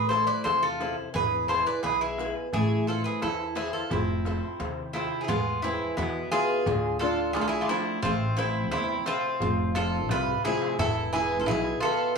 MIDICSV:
0, 0, Header, 1, 6, 480
1, 0, Start_track
1, 0, Tempo, 688863
1, 800, Time_signature, 2, 2, 24, 8
1, 8485, End_track
2, 0, Start_track
2, 0, Title_t, "Bouzouki"
2, 0, Program_c, 0, 25
2, 62, Note_on_c, 0, 72, 89
2, 184, Note_off_c, 0, 72, 0
2, 186, Note_on_c, 0, 74, 84
2, 304, Note_off_c, 0, 74, 0
2, 306, Note_on_c, 0, 72, 94
2, 437, Note_off_c, 0, 72, 0
2, 437, Note_on_c, 0, 69, 81
2, 662, Note_off_c, 0, 69, 0
2, 805, Note_on_c, 0, 71, 92
2, 1027, Note_off_c, 0, 71, 0
2, 1039, Note_on_c, 0, 72, 90
2, 1152, Note_off_c, 0, 72, 0
2, 1165, Note_on_c, 0, 74, 81
2, 1275, Note_off_c, 0, 74, 0
2, 1280, Note_on_c, 0, 71, 89
2, 1393, Note_off_c, 0, 71, 0
2, 1404, Note_on_c, 0, 68, 84
2, 1626, Note_off_c, 0, 68, 0
2, 1767, Note_on_c, 0, 68, 93
2, 2006, Note_off_c, 0, 68, 0
2, 2008, Note_on_c, 0, 69, 83
2, 2116, Note_off_c, 0, 69, 0
2, 2119, Note_on_c, 0, 71, 73
2, 2233, Note_off_c, 0, 71, 0
2, 2246, Note_on_c, 0, 69, 88
2, 2468, Note_off_c, 0, 69, 0
2, 2482, Note_on_c, 0, 68, 80
2, 2594, Note_off_c, 0, 68, 0
2, 2599, Note_on_c, 0, 69, 77
2, 2725, Note_off_c, 0, 69, 0
2, 2730, Note_on_c, 0, 64, 67
2, 3419, Note_off_c, 0, 64, 0
2, 3437, Note_on_c, 0, 64, 79
2, 3629, Note_on_c, 0, 68, 63
2, 3637, Note_off_c, 0, 64, 0
2, 3681, Note_off_c, 0, 68, 0
2, 3681, Note_on_c, 0, 65, 86
2, 3915, Note_off_c, 0, 65, 0
2, 3918, Note_on_c, 0, 64, 86
2, 4144, Note_off_c, 0, 64, 0
2, 4159, Note_on_c, 0, 64, 80
2, 4384, Note_off_c, 0, 64, 0
2, 4401, Note_on_c, 0, 68, 106
2, 4853, Note_off_c, 0, 68, 0
2, 4873, Note_on_c, 0, 69, 94
2, 5100, Note_off_c, 0, 69, 0
2, 5109, Note_on_c, 0, 68, 96
2, 5166, Note_off_c, 0, 68, 0
2, 5169, Note_on_c, 0, 69, 75
2, 5207, Note_off_c, 0, 69, 0
2, 5209, Note_on_c, 0, 68, 92
2, 5303, Note_on_c, 0, 65, 63
2, 5357, Note_off_c, 0, 65, 0
2, 5360, Note_on_c, 0, 64, 93
2, 5361, Note_off_c, 0, 68, 0
2, 5584, Note_off_c, 0, 64, 0
2, 5592, Note_on_c, 0, 65, 93
2, 5819, Note_off_c, 0, 65, 0
2, 5842, Note_on_c, 0, 64, 89
2, 6065, Note_off_c, 0, 64, 0
2, 6073, Note_on_c, 0, 64, 98
2, 6300, Note_off_c, 0, 64, 0
2, 6322, Note_on_c, 0, 65, 105
2, 6799, Note_on_c, 0, 69, 100
2, 6816, Note_off_c, 0, 65, 0
2, 7023, Note_off_c, 0, 69, 0
2, 7047, Note_on_c, 0, 71, 102
2, 7267, Note_off_c, 0, 71, 0
2, 7280, Note_on_c, 0, 68, 105
2, 7503, Note_off_c, 0, 68, 0
2, 7520, Note_on_c, 0, 69, 105
2, 7743, Note_off_c, 0, 69, 0
2, 7758, Note_on_c, 0, 68, 98
2, 7937, Note_off_c, 0, 68, 0
2, 7949, Note_on_c, 0, 69, 68
2, 7996, Note_off_c, 0, 69, 0
2, 7999, Note_on_c, 0, 68, 102
2, 8237, Note_off_c, 0, 68, 0
2, 8240, Note_on_c, 0, 69, 102
2, 8473, Note_off_c, 0, 69, 0
2, 8485, End_track
3, 0, Start_track
3, 0, Title_t, "Steel-string acoustic guitar"
3, 0, Program_c, 1, 25
3, 0, Note_on_c, 1, 57, 61
3, 79, Note_on_c, 1, 64, 47
3, 86, Note_on_c, 1, 69, 34
3, 89, Note_on_c, 1, 72, 51
3, 306, Note_off_c, 1, 57, 0
3, 327, Note_on_c, 1, 48, 64
3, 465, Note_off_c, 1, 64, 0
3, 466, Note_off_c, 1, 69, 0
3, 470, Note_off_c, 1, 72, 0
3, 560, Note_on_c, 1, 64, 49
3, 565, Note_on_c, 1, 69, 46
3, 568, Note_on_c, 1, 72, 51
3, 753, Note_off_c, 1, 64, 0
3, 755, Note_off_c, 1, 69, 0
3, 757, Note_off_c, 1, 72, 0
3, 790, Note_off_c, 1, 48, 0
3, 799, Note_on_c, 1, 52, 57
3, 1045, Note_on_c, 1, 64, 45
3, 1050, Note_on_c, 1, 68, 39
3, 1050, Note_on_c, 1, 71, 52
3, 1267, Note_off_c, 1, 52, 0
3, 1285, Note_on_c, 1, 47, 61
3, 1428, Note_off_c, 1, 64, 0
3, 1429, Note_off_c, 1, 68, 0
3, 1431, Note_off_c, 1, 71, 0
3, 1528, Note_on_c, 1, 64, 49
3, 1533, Note_on_c, 1, 68, 45
3, 1536, Note_on_c, 1, 71, 59
3, 1719, Note_off_c, 1, 64, 0
3, 1719, Note_off_c, 1, 68, 0
3, 1723, Note_off_c, 1, 71, 0
3, 1750, Note_off_c, 1, 47, 0
3, 1771, Note_on_c, 1, 57, 60
3, 2013, Note_on_c, 1, 64, 51
3, 2019, Note_on_c, 1, 69, 39
3, 2019, Note_on_c, 1, 72, 53
3, 2233, Note_off_c, 1, 57, 0
3, 2246, Note_on_c, 1, 52, 57
3, 2395, Note_off_c, 1, 64, 0
3, 2395, Note_off_c, 1, 69, 0
3, 2397, Note_off_c, 1, 72, 0
3, 2476, Note_on_c, 1, 64, 51
3, 2484, Note_on_c, 1, 69, 36
3, 2485, Note_on_c, 1, 72, 53
3, 2672, Note_off_c, 1, 64, 0
3, 2674, Note_off_c, 1, 69, 0
3, 2676, Note_off_c, 1, 72, 0
3, 2711, Note_off_c, 1, 52, 0
3, 2726, Note_on_c, 1, 53, 61
3, 2968, Note_on_c, 1, 60, 41
3, 2971, Note_on_c, 1, 69, 45
3, 2977, Note_on_c, 1, 72, 53
3, 3191, Note_off_c, 1, 53, 0
3, 3204, Note_on_c, 1, 48, 66
3, 3350, Note_off_c, 1, 60, 0
3, 3353, Note_off_c, 1, 69, 0
3, 3353, Note_off_c, 1, 72, 0
3, 3438, Note_on_c, 1, 65, 56
3, 3445, Note_on_c, 1, 69, 40
3, 3447, Note_on_c, 1, 72, 50
3, 3633, Note_off_c, 1, 65, 0
3, 3634, Note_off_c, 1, 69, 0
3, 3637, Note_off_c, 1, 72, 0
3, 3669, Note_off_c, 1, 48, 0
3, 3684, Note_on_c, 1, 56, 66
3, 3931, Note_on_c, 1, 64, 53
3, 3937, Note_on_c, 1, 68, 42
3, 3939, Note_on_c, 1, 71, 52
3, 4149, Note_off_c, 1, 56, 0
3, 4168, Note_on_c, 1, 47, 71
3, 4312, Note_off_c, 1, 64, 0
3, 4314, Note_off_c, 1, 68, 0
3, 4316, Note_off_c, 1, 71, 0
3, 4406, Note_on_c, 1, 68, 48
3, 4409, Note_on_c, 1, 71, 62
3, 4409, Note_on_c, 1, 76, 49
3, 4596, Note_off_c, 1, 76, 0
3, 4598, Note_off_c, 1, 68, 0
3, 4599, Note_off_c, 1, 71, 0
3, 4631, Note_off_c, 1, 47, 0
3, 4648, Note_on_c, 1, 50, 68
3, 4891, Note_on_c, 1, 69, 51
3, 4893, Note_on_c, 1, 65, 41
3, 4896, Note_on_c, 1, 62, 45
3, 5111, Note_off_c, 1, 50, 0
3, 5131, Note_on_c, 1, 57, 65
3, 5271, Note_off_c, 1, 62, 0
3, 5271, Note_off_c, 1, 65, 0
3, 5273, Note_off_c, 1, 69, 0
3, 5362, Note_on_c, 1, 62, 50
3, 5365, Note_on_c, 1, 53, 52
3, 5371, Note_on_c, 1, 69, 64
3, 5554, Note_off_c, 1, 62, 0
3, 5556, Note_off_c, 1, 53, 0
3, 5559, Note_off_c, 1, 69, 0
3, 5592, Note_off_c, 1, 57, 0
3, 5609, Note_on_c, 1, 57, 71
3, 5834, Note_on_c, 1, 64, 50
3, 5841, Note_on_c, 1, 69, 47
3, 5845, Note_on_c, 1, 72, 56
3, 6070, Note_off_c, 1, 57, 0
3, 6084, Note_on_c, 1, 48, 64
3, 6221, Note_off_c, 1, 64, 0
3, 6225, Note_off_c, 1, 69, 0
3, 6227, Note_off_c, 1, 72, 0
3, 6322, Note_on_c, 1, 76, 56
3, 6327, Note_on_c, 1, 69, 57
3, 6331, Note_on_c, 1, 72, 53
3, 6513, Note_off_c, 1, 76, 0
3, 6517, Note_off_c, 1, 69, 0
3, 6517, Note_off_c, 1, 72, 0
3, 6548, Note_off_c, 1, 48, 0
3, 6561, Note_on_c, 1, 53, 65
3, 6804, Note_on_c, 1, 65, 44
3, 6808, Note_on_c, 1, 60, 50
3, 6810, Note_on_c, 1, 69, 48
3, 7026, Note_off_c, 1, 53, 0
3, 7046, Note_on_c, 1, 48, 71
3, 7187, Note_off_c, 1, 65, 0
3, 7188, Note_off_c, 1, 69, 0
3, 7189, Note_off_c, 1, 60, 0
3, 7288, Note_on_c, 1, 53, 55
3, 7295, Note_on_c, 1, 57, 47
3, 7295, Note_on_c, 1, 72, 59
3, 7478, Note_off_c, 1, 53, 0
3, 7479, Note_off_c, 1, 57, 0
3, 7481, Note_off_c, 1, 72, 0
3, 7509, Note_off_c, 1, 48, 0
3, 7532, Note_on_c, 1, 52, 56
3, 7770, Note_on_c, 1, 64, 47
3, 7776, Note_on_c, 1, 68, 39
3, 7777, Note_on_c, 1, 71, 57
3, 7992, Note_off_c, 1, 52, 0
3, 8020, Note_on_c, 1, 47, 65
3, 8151, Note_off_c, 1, 64, 0
3, 8152, Note_off_c, 1, 68, 0
3, 8154, Note_off_c, 1, 71, 0
3, 8256, Note_on_c, 1, 71, 55
3, 8257, Note_on_c, 1, 76, 47
3, 8440, Note_off_c, 1, 76, 0
3, 8442, Note_off_c, 1, 71, 0
3, 8476, Note_off_c, 1, 47, 0
3, 8485, End_track
4, 0, Start_track
4, 0, Title_t, "Bouzouki"
4, 0, Program_c, 2, 25
4, 72, Note_on_c, 2, 69, 74
4, 187, Note_off_c, 2, 69, 0
4, 190, Note_on_c, 2, 71, 82
4, 306, Note_off_c, 2, 71, 0
4, 315, Note_on_c, 2, 69, 70
4, 429, Note_off_c, 2, 69, 0
4, 436, Note_on_c, 2, 65, 78
4, 661, Note_off_c, 2, 65, 0
4, 793, Note_on_c, 2, 68, 79
4, 1020, Note_off_c, 2, 68, 0
4, 1033, Note_on_c, 2, 69, 69
4, 1148, Note_off_c, 2, 69, 0
4, 1160, Note_on_c, 2, 71, 71
4, 1271, Note_off_c, 2, 71, 0
4, 1274, Note_on_c, 2, 68, 72
4, 1389, Note_off_c, 2, 68, 0
4, 1401, Note_on_c, 2, 64, 74
4, 1625, Note_off_c, 2, 64, 0
4, 1766, Note_on_c, 2, 64, 77
4, 1988, Note_off_c, 2, 64, 0
4, 2002, Note_on_c, 2, 65, 58
4, 2114, Note_off_c, 2, 65, 0
4, 2129, Note_on_c, 2, 68, 73
4, 2238, Note_off_c, 2, 68, 0
4, 2248, Note_on_c, 2, 64, 63
4, 2469, Note_off_c, 2, 64, 0
4, 2485, Note_on_c, 2, 64, 73
4, 2596, Note_off_c, 2, 64, 0
4, 2609, Note_on_c, 2, 65, 54
4, 2718, Note_off_c, 2, 65, 0
4, 2738, Note_on_c, 2, 60, 61
4, 3423, Note_off_c, 2, 60, 0
4, 3454, Note_on_c, 2, 60, 59
4, 3627, Note_off_c, 2, 60, 0
4, 3653, Note_on_c, 2, 64, 46
4, 3688, Note_on_c, 2, 59, 74
4, 3689, Note_off_c, 2, 64, 0
4, 3909, Note_off_c, 2, 59, 0
4, 3929, Note_on_c, 2, 60, 62
4, 4149, Note_off_c, 2, 60, 0
4, 4174, Note_on_c, 2, 59, 63
4, 4392, Note_off_c, 2, 59, 0
4, 4405, Note_on_c, 2, 65, 70
4, 4855, Note_off_c, 2, 65, 0
4, 4882, Note_on_c, 2, 65, 73
4, 5105, Note_off_c, 2, 65, 0
4, 5119, Note_on_c, 2, 65, 68
4, 5157, Note_off_c, 2, 65, 0
4, 5165, Note_on_c, 2, 65, 63
4, 5213, Note_off_c, 2, 65, 0
4, 5218, Note_on_c, 2, 64, 78
4, 5309, Note_on_c, 2, 62, 58
4, 5351, Note_off_c, 2, 64, 0
4, 5356, Note_off_c, 2, 62, 0
4, 5360, Note_on_c, 2, 60, 66
4, 5584, Note_off_c, 2, 60, 0
4, 5591, Note_on_c, 2, 60, 86
4, 5819, Note_off_c, 2, 60, 0
4, 5829, Note_on_c, 2, 60, 67
4, 6058, Note_off_c, 2, 60, 0
4, 6072, Note_on_c, 2, 60, 73
4, 6299, Note_off_c, 2, 60, 0
4, 6314, Note_on_c, 2, 60, 81
4, 6769, Note_off_c, 2, 60, 0
4, 6794, Note_on_c, 2, 65, 76
4, 7020, Note_off_c, 2, 65, 0
4, 7043, Note_on_c, 2, 65, 86
4, 7265, Note_off_c, 2, 65, 0
4, 7282, Note_on_c, 2, 64, 80
4, 7504, Note_off_c, 2, 64, 0
4, 7521, Note_on_c, 2, 64, 91
4, 7744, Note_off_c, 2, 64, 0
4, 7753, Note_on_c, 2, 64, 80
4, 7934, Note_off_c, 2, 64, 0
4, 7940, Note_on_c, 2, 65, 60
4, 7984, Note_off_c, 2, 65, 0
4, 7987, Note_on_c, 2, 64, 76
4, 8216, Note_off_c, 2, 64, 0
4, 8226, Note_on_c, 2, 65, 82
4, 8456, Note_off_c, 2, 65, 0
4, 8485, End_track
5, 0, Start_track
5, 0, Title_t, "Upright bass"
5, 0, Program_c, 3, 32
5, 0, Note_on_c, 3, 33, 103
5, 171, Note_off_c, 3, 33, 0
5, 318, Note_on_c, 3, 40, 77
5, 655, Note_off_c, 3, 40, 0
5, 799, Note_on_c, 3, 28, 106
5, 1136, Note_off_c, 3, 28, 0
5, 1283, Note_on_c, 3, 35, 80
5, 1619, Note_off_c, 3, 35, 0
5, 1765, Note_on_c, 3, 33, 105
5, 2101, Note_off_c, 3, 33, 0
5, 2247, Note_on_c, 3, 40, 78
5, 2582, Note_off_c, 3, 40, 0
5, 2723, Note_on_c, 3, 29, 110
5, 3059, Note_off_c, 3, 29, 0
5, 3204, Note_on_c, 3, 39, 81
5, 3540, Note_off_c, 3, 39, 0
5, 3684, Note_on_c, 3, 40, 100
5, 4020, Note_off_c, 3, 40, 0
5, 4162, Note_on_c, 3, 40, 81
5, 4330, Note_off_c, 3, 40, 0
5, 4642, Note_on_c, 3, 38, 102
5, 5125, Note_off_c, 3, 38, 0
5, 5125, Note_on_c, 3, 35, 94
5, 5292, Note_off_c, 3, 35, 0
5, 5605, Note_on_c, 3, 33, 94
5, 6082, Note_off_c, 3, 33, 0
5, 6082, Note_on_c, 3, 40, 94
5, 6249, Note_off_c, 3, 40, 0
5, 6562, Note_on_c, 3, 29, 104
5, 7043, Note_off_c, 3, 29, 0
5, 7043, Note_on_c, 3, 36, 88
5, 7210, Note_off_c, 3, 36, 0
5, 7517, Note_on_c, 3, 28, 101
5, 7999, Note_off_c, 3, 28, 0
5, 7999, Note_on_c, 3, 35, 83
5, 8167, Note_off_c, 3, 35, 0
5, 8485, End_track
6, 0, Start_track
6, 0, Title_t, "Darbuka"
6, 73, Note_on_c, 9, 63, 66
6, 142, Note_off_c, 9, 63, 0
6, 314, Note_on_c, 9, 63, 78
6, 383, Note_off_c, 9, 63, 0
6, 560, Note_on_c, 9, 63, 69
6, 630, Note_off_c, 9, 63, 0
6, 801, Note_on_c, 9, 64, 96
6, 871, Note_off_c, 9, 64, 0
6, 1039, Note_on_c, 9, 63, 66
6, 1108, Note_off_c, 9, 63, 0
6, 1278, Note_on_c, 9, 63, 80
6, 1348, Note_off_c, 9, 63, 0
6, 1521, Note_on_c, 9, 63, 72
6, 1591, Note_off_c, 9, 63, 0
6, 1761, Note_on_c, 9, 64, 91
6, 1831, Note_off_c, 9, 64, 0
6, 2243, Note_on_c, 9, 63, 80
6, 2313, Note_off_c, 9, 63, 0
6, 2479, Note_on_c, 9, 63, 65
6, 2548, Note_off_c, 9, 63, 0
6, 2721, Note_on_c, 9, 64, 103
6, 2791, Note_off_c, 9, 64, 0
6, 2963, Note_on_c, 9, 63, 70
6, 3033, Note_off_c, 9, 63, 0
6, 3084, Note_on_c, 9, 63, 27
6, 3154, Note_off_c, 9, 63, 0
6, 3203, Note_on_c, 9, 63, 72
6, 3273, Note_off_c, 9, 63, 0
6, 3322, Note_on_c, 9, 63, 27
6, 3391, Note_off_c, 9, 63, 0
6, 3445, Note_on_c, 9, 63, 74
6, 3515, Note_off_c, 9, 63, 0
6, 3570, Note_on_c, 9, 63, 25
6, 3639, Note_off_c, 9, 63, 0
6, 3684, Note_on_c, 9, 64, 100
6, 3753, Note_off_c, 9, 64, 0
6, 3922, Note_on_c, 9, 63, 61
6, 3992, Note_off_c, 9, 63, 0
6, 4162, Note_on_c, 9, 63, 78
6, 4231, Note_off_c, 9, 63, 0
6, 4286, Note_on_c, 9, 63, 25
6, 4355, Note_off_c, 9, 63, 0
6, 4401, Note_on_c, 9, 63, 71
6, 4471, Note_off_c, 9, 63, 0
6, 4642, Note_on_c, 9, 64, 102
6, 4712, Note_off_c, 9, 64, 0
6, 4880, Note_on_c, 9, 63, 68
6, 4949, Note_off_c, 9, 63, 0
6, 5116, Note_on_c, 9, 63, 86
6, 5186, Note_off_c, 9, 63, 0
6, 5239, Note_on_c, 9, 63, 26
6, 5309, Note_off_c, 9, 63, 0
6, 5352, Note_on_c, 9, 63, 80
6, 5422, Note_off_c, 9, 63, 0
6, 5593, Note_on_c, 9, 64, 101
6, 5663, Note_off_c, 9, 64, 0
6, 5837, Note_on_c, 9, 63, 66
6, 5906, Note_off_c, 9, 63, 0
6, 6072, Note_on_c, 9, 63, 77
6, 6142, Note_off_c, 9, 63, 0
6, 6198, Note_on_c, 9, 63, 25
6, 6267, Note_off_c, 9, 63, 0
6, 6312, Note_on_c, 9, 63, 67
6, 6382, Note_off_c, 9, 63, 0
6, 6552, Note_on_c, 9, 64, 91
6, 6622, Note_off_c, 9, 64, 0
6, 6793, Note_on_c, 9, 63, 68
6, 6863, Note_off_c, 9, 63, 0
6, 7032, Note_on_c, 9, 63, 74
6, 7102, Note_off_c, 9, 63, 0
6, 7156, Note_on_c, 9, 64, 55
6, 7225, Note_off_c, 9, 64, 0
6, 7276, Note_on_c, 9, 63, 67
6, 7345, Note_off_c, 9, 63, 0
6, 7399, Note_on_c, 9, 63, 71
6, 7469, Note_off_c, 9, 63, 0
6, 7519, Note_on_c, 9, 64, 102
6, 7589, Note_off_c, 9, 64, 0
6, 7757, Note_on_c, 9, 63, 70
6, 7827, Note_off_c, 9, 63, 0
6, 7990, Note_on_c, 9, 63, 83
6, 8060, Note_off_c, 9, 63, 0
6, 8114, Note_on_c, 9, 63, 28
6, 8183, Note_off_c, 9, 63, 0
6, 8238, Note_on_c, 9, 63, 75
6, 8308, Note_off_c, 9, 63, 0
6, 8485, End_track
0, 0, End_of_file